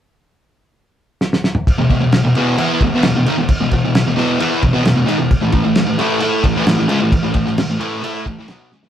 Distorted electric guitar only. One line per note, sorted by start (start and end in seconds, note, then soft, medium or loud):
1.78 1.89 E2 medium
1.78 1.89 B2 medium
1.90 1.99 E2 medium
1.90 2.00 B2 medium
2.01 2.19 E2 medium
2.01 2.19 B2 medium
2.24 2.34 E2 medium
2.24 2.36 B2 medium
2.35 2.57 E2 loud
2.35 2.58 B2 loud
2.35 2.57 E3 loud
2.58 2.80 E3 loud
2.58 2.81 B3 loud
2.58 2.81 E4 loud
2.83 2.92 E2 medium
2.83 2.93 B2 medium
2.94 3.03 E2 medium
2.94 3.04 B2 loud
3.05 3.15 E2 medium
3.05 3.15 B2 medium
3.16 3.27 E2 medium
3.16 3.27 B2 medium
3.27 3.37 G#2 medium
3.27 3.38 D#3 loud
3.38 3.49 E2 medium
3.38 3.49 B2 medium
3.61 3.72 E2 medium
3.61 3.72 B2 medium
3.74 3.84 E2 medium
3.74 3.84 B2 medium
3.85 4.02 E2 medium
3.85 4.02 B2 medium
4.07 4.15 E2 medium
4.07 4.16 B2 medium
4.16 4.38 E2 medium
4.16 4.39 B2 loud
4.16 4.38 E3 loud
4.39 4.61 E3 medium
4.39 4.62 B3 medium
4.39 4.62 E4 loud
4.62 4.72 E2 medium
4.62 4.73 B2 medium
4.73 4.83 E2 medium
4.73 4.83 B2 loud
4.84 4.94 E2 medium
4.84 4.94 B2 medium
4.95 5.06 E2 medium
4.95 5.07 B2 medium
5.06 5.17 G#2 loud
5.06 5.18 D#3 loud
5.19 5.30 E2 medium
5.19 5.30 B2 medium
5.41 5.51 A2 medium
5.41 5.51 E3 medium
5.52 5.63 A2 medium
5.52 5.64 E3 medium
5.64 5.82 A2 medium
5.64 5.83 E3 medium
5.87 5.97 A2 medium
5.87 5.98 E3 medium
5.98 6.20 A2 medium
5.98 6.20 E3 loud
5.98 6.19 A3 loud
6.20 6.42 A3 medium
6.20 6.43 E4 medium
6.20 6.43 A4 loud
6.43 6.55 A2 medium
6.43 6.55 E3 medium
6.56 6.65 A2 medium
6.56 6.66 E3 loud
6.66 6.77 A2 medium
6.66 6.78 E3 medium
6.78 6.88 A2 medium
6.78 6.89 E3 medium
6.88 6.99 C#3 medium
6.88 7.00 G#3 loud
7.01 7.12 A2 medium
7.01 7.12 E3 medium
7.23 7.32 A2 medium
7.23 7.33 E3 medium
7.34 7.45 A2 medium
7.34 7.45 E3 medium
7.46 7.64 A2 medium
7.46 7.64 E3 medium
7.70 7.78 A2 medium
7.70 7.79 E3 medium
7.79 8.01 A2 medium
7.79 8.02 E3 loud
7.79 8.01 A3 loud
8.02 8.25 A3 loud
8.02 8.25 E4 medium
8.02 8.25 A4 loud
8.26 8.37 A2 medium
8.26 8.37 E3 medium
8.38 8.48 A2 medium
8.38 8.49 E3 loud
8.49 8.71 B2 medium
8.49 8.71 F#3 loud
8.49 8.71 B3 loud
8.72 8.81 C#3 loud
8.72 8.83 G#3 loud
8.82 8.89 A2 medium
8.82 8.89 E3 loud